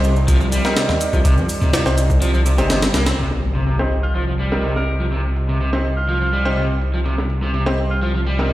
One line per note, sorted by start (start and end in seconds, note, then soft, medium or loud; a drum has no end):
0.00 0.60 C2 medium
0.00 3.15 G3 medium
0.00 3.15 C4 medium
0.00 3.15 D#4 medium
0.00 3.17 D5 medium
0.00 shaker medium
0.16 shaker soft
0.28 0.37 F3 loud
0.28 kick loud
0.28 closed hi-hat medium
0.28 shaker soft
0.41 0.46 F3 medium
0.41 shaker soft
0.52 0.75 G3 loud
0.52 closed hi-hat medium
0.52 shaker medium
0.65 1.83 C4 medium
0.65 1.83 D#4 medium
0.65 1.83 G4 medium
0.65 1.83 A#4 loud
0.65 snare soft
0.65 shaker soft
0.77 0.85 C3 medium
0.77 snare loud
0.77 closed hi-hat medium
0.77 shaker soft
0.89 0.98 D#2 medium
0.89 snare soft
0.89 shaker soft
1.01 closed hi-hat medium
1.01 shaker medium
1.13 1.22 C2 loud
1.13 1.18 F3 medium
1.13 kick loud
1.13 shaker soft
1.25 1.39 C2 medium
1.25 1.34 C3 loud
1.25 kick loud
1.25 closed hi-hat medium
1.25 shaker soft
1.37 1.46 F2 medium
1.37 shaker soft
1.49 open hi-hat medium
1.49 shaker medium
1.61 1.70 C3 loud
1.61 kick medium
1.61 shaker soft
1.73 1.82 C3 medium
1.73 snare loud
1.73 closed hi-hat medium
1.73 shaker soft
1.86 2.60 C2 medium
1.86 1.97 C4 medium
1.86 1.97 D#4 medium
1.86 1.97 G4 medium
1.86 1.97 C5 medium
1.86 snare soft
1.86 shaker soft
1.98 closed hi-hat medium
1.98 shaker medium
2.10 kick medium
2.10 shaker soft
2.22 2.31 F3 loud
2.22 closed hi-hat medium
2.22 shaker soft
2.34 2.39 F3 medium
2.34 shaker soft
2.46 2.51 C3 medium
2.46 closed hi-hat medium
2.46 shaker medium
2.58 2.90 G1 medium
2.58 2.63 C3 loud
2.58 2.76 C4 loud
2.58 2.76 D#4 medium
2.58 2.76 G4 medium
2.58 2.76 C5 loud
2.58 closed hi-hat soft
2.58 shaker soft
2.70 2.79 C3 medium
2.70 snare loud
2.70 closed hi-hat medium
2.70 shaker soft
2.82 snare loud
2.82 closed hi-hat medium
2.94 3.13 C2 medium
2.94 3.03 A#3 medium
2.94 snare loud
2.94 closed hi-hat medium
2.94 shaker medium
3.06 3.18 C4 medium
3.06 snare loud
3.06 closed hi-hat medium
3.06 shaker soft
3.18 8.53 C2 medium
3.18 3.27 C3 medium
3.18 8.53 G3 medium
3.18 8.53 C4 medium
3.18 8.53 D#4 medium
3.18 8.53 C5 medium
3.18 impact medium
3.31 snare soft
3.43 closed hi-hat medium
3.55 3.63 C3 medium
3.67 3.76 C3 medium
3.67 closed hi-hat medium
3.79 3.90 C4 medium
3.79 3.90 D#4 medium
3.79 3.90 G4 medium
3.79 3.90 C5 medium
3.79 snare soft
3.91 closed hi-hat medium
4.03 4.11 F4 medium
4.15 4.24 F3 medium
4.15 4.23 F4 medium
4.15 closed hi-hat medium
4.28 4.33 F3 medium
4.39 4.62 G3 medium
4.39 closed hi-hat medium
4.52 5.70 C4 medium
4.52 5.70 D#4 medium
4.52 5.70 G4 medium
4.52 5.70 A#4 medium
4.52 snare soft
4.63 4.72 C3 medium
4.63 closed hi-hat medium
4.76 4.92 A#4 medium
4.76 snare soft
4.88 closed hi-hat medium
5.00 5.05 F3 medium
5.12 5.21 C3 medium
5.12 closed hi-hat medium
5.36 open hi-hat medium
5.49 5.57 C3 medium
5.60 5.69 C3 medium
5.60 closed hi-hat medium
5.73 5.84 C4 medium
5.73 5.84 D#4 medium
5.73 5.84 G4 medium
5.73 5.84 C5 medium
5.73 snare soft
5.85 closed hi-hat medium
5.97 6.65 F4 medium
6.09 6.18 F3 medium
6.09 closed hi-hat medium
6.21 6.26 F3 medium
6.33 6.56 G3 medium
6.33 closed hi-hat medium
6.45 6.63 C4 medium
6.45 6.63 D#4 medium
6.45 6.63 G4 medium
6.45 6.63 C5 medium
6.57 6.66 C3 medium
6.57 closed hi-hat medium
6.82 closed hi-hat medium
6.94 6.99 F3 medium
7.05 7.14 C3 medium
7.05 closed hi-hat medium
7.05 riser medium
7.18 snare soft
7.30 closed hi-hat medium
7.42 7.51 C3 medium
7.54 7.63 C3 medium
7.54 closed hi-hat medium
7.66 7.77 C4 medium
7.66 7.77 D#4 medium
7.66 7.77 G4 medium
7.66 7.77 C5 loud
7.66 snare medium
7.78 closed hi-hat medium
7.90 7.98 F4 medium
8.02 8.11 F3 medium
8.02 8.10 F4 medium
8.02 closed hi-hat medium
8.15 8.20 F3 medium
8.26 8.50 G3 medium
8.26 closed hi-hat medium
8.39 8.53 C4 medium
8.39 8.53 D#4 medium
8.39 8.53 G4 medium
8.39 8.53 A#4 medium
8.39 snare soft